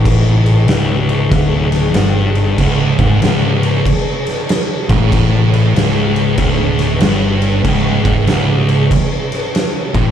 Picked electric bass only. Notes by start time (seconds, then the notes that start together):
Already playing: A1
0.69 C#1
1.31 D1
1.94 G1
2.59 C#1
2.99 G#1
3.20 C#1
4.90 A1
5.75 C#1
6.38 D1
7.00 G1
7.64 C#1
8.05 G#1
8.28 C#1
9.95 A1